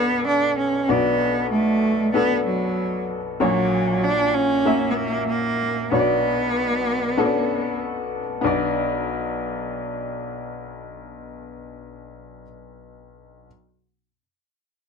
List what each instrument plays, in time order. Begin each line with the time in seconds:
Already playing: upright piano B1 B2 B3 D4 F#4 A4 D5, cello B3
0.27 cello D4
0.58 cello C#4
0.89 upright piano B1 B2 B3 D4 F#4 D5, cello B3
1.51 cello A3
2.14 upright piano B3 D4 F#4 A4, cello B3
2.46 cello F#3
3.40 upright piano A#1 A#2 A#3 F#4 C#5, cello F#3
4.03 cello D4
4.34 cello C#4
4.66 upright piano A#3 C#4 F#4 E5
4.90 cello B3
4.97 cello A#3
5.28 cello A#3
5.91 upright piano B1 B2 B3 D4 F#4 C#5, cello B3
5.99 upright piano D5
7.17 upright piano B3 C#4 F#4 A4
7.24 upright piano D4
8.41 upright piano B1 B3 D4 F#4
8.46 upright piano D5